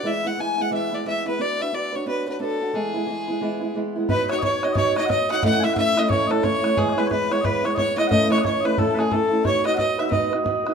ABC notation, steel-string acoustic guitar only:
X:1
M:4/4
L:1/8
Q:"Swing" 1/4=179
K:Emix
V:1 name="Steel-string acoustic guitar"
[E,G,B,E] [G,B,E] [E,G,B,E] [G,B,E] [E,G,B,E] [G,B,E] [E,G,B,E] [G,B,E] | [B,DFB] [DFB] [B,DFB] [DFB] [B,DFB] [DFB] [B,DFB] [DFB] | [E,G,B,E] [G,B,E] [E,G,B,E] [G,B,E] [E,G,B,E] [G,B,E] [E,G,B,E] [G,B,E] | [K:Bmix] [B,DFc] [DFc] [B,DFc] [DFc] [B,DFc] [DFc] [B,DFc] [DFc] |
[A,,E,A,CE] [A,CE] [E,A,CE] [A,CE] [A,,E,A,CE] [A,CE] [E,A,CE] [A,CE] | [E,G,B,E] [G,B,E] [E,G,B,E] [G,B,E] [E,G,B,E] [G,B,E] [E,G,B,E] [G,B,E] | [A,,E,A,CE] [A,CE] [E,A,CE] [A,CE] [A,,E,A,CE] [A,CE] [E,A,CE] [A,CE] | [B,DFB] [DFB] [B,DFB] [DFB] [B,DFB] [DFB] [B,DFB] [DFB] |]